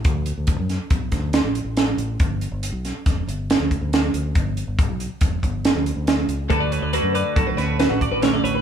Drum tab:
HH |xxxxxxxxxx|xxxxxxxxxx|xxxxxxxxxx|xxxxxxxxxx|
SD |---o-oo-o-|---oo-o-o-|------o-o-|-----oo-o-|
BD |o-o-oo----|o---o--o--|o-o-oo----|o---o--o--|